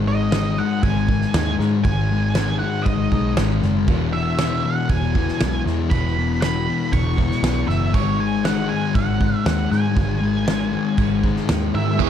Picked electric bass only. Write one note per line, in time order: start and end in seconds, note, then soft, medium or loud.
0.00 0.60 G#1 loud
0.84 1.23 G#1 loud
1.34 1.54 D#2 loud
1.59 1.86 G#2 loud
1.85 2.64 G#1 loud
2.86 3.06 G#1 medium
3.12 3.35 B1 medium
3.37 3.60 G#1 medium
3.63 3.88 F#1 medium
3.88 4.67 E1 loud
4.90 5.29 E1 loud
5.41 5.61 B1 loud
5.66 5.93 E2 loud
5.91 6.70 E1 loud
6.93 7.32 E1 loud
7.43 7.63 B1 loud
7.68 7.94 F#1 medium
7.94 8.73 G#1 loud
8.95 9.35 G#1 loud
9.46 9.66 D#2 loud
9.72 9.98 G#2 medium
9.97 10.75 G#1 loud
10.98 11.38 G#1 medium
11.50 11.69 D#2 loud
11.75 12.02 G#2 medium
12.00 12.10 E1 loud